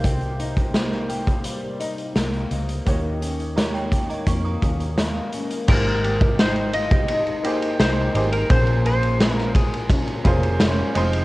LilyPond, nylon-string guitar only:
\new Staff \with { instrumentName = "Nylon-string guitar" } { \time 4/4 \key aes \major \tempo 4 = 85 <c g'>8 ees'8 bes8 g'8 g8 ees'8 bes8 ees'8 | <ees g'>8 des'8 bes8 g'8 bes8 des'8 bes8 des'8 | aes8 g'8 ees'8 f'16 g'16 ees'8 g'8 ees'8 g'8 | bes,8 aes'8 des'8 aes'8 des'8 aes'8 des'8 f8 | }